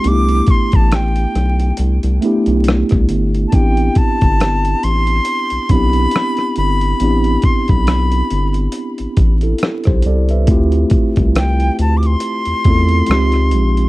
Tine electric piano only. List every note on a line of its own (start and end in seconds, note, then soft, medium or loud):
0.03 1.61 A3 medium
0.03 1.61 B3 medium
0.03 1.62 D4 medium
0.03 0.13 D#4 soft
0.08 1.63 G4 medium
0.13 1.66 E4 medium
2.21 3.39 A3 medium
2.21 3.39 B3 medium
2.21 3.40 D4 medium
2.21 3.41 E4 medium
2.26 3.41 G4 medium
3.52 5.09 B3 medium
3.52 5.09 C4 medium
3.52 5.10 D4 medium
3.52 5.10 E4 medium
3.56 5.11 G4 medium
5.69 6.87 B3 medium
5.69 6.87 C4 medium
5.69 6.88 D4 medium
5.69 6.89 E4 medium
5.73 6.89 G4 medium
7.00 8.57 B3 medium
7.00 8.57 C4 medium
7.00 8.58 D4 medium
7.00 8.58 E4 medium
7.05 8.59 G4 medium
9.43 9.84 E4 soft
9.43 9.84 A4 medium
9.87 10.04 G4 medium
9.87 10.04 C5 medium
10.06 10.29 A4 medium
10.06 10.28 D5 medium
10.31 10.71 B4 medium
10.31 10.71 E5 medium
10.47 12.04 A3 medium
10.47 12.05 C4 medium
10.47 12.05 E4 medium
10.47 12.06 F4 medium
10.51 12.06 G4 medium
12.65 13.08 A3 medium
12.65 13.08 C4 medium
12.65 13.10 E4 medium
12.65 13.10 F4 medium
12.69 13.11 A4 medium
13.08 13.87 G#3 medium
13.08 13.87 C4 medium
13.08 13.88 D#4 medium
13.08 13.89 F4 medium
13.13 13.89 G4 medium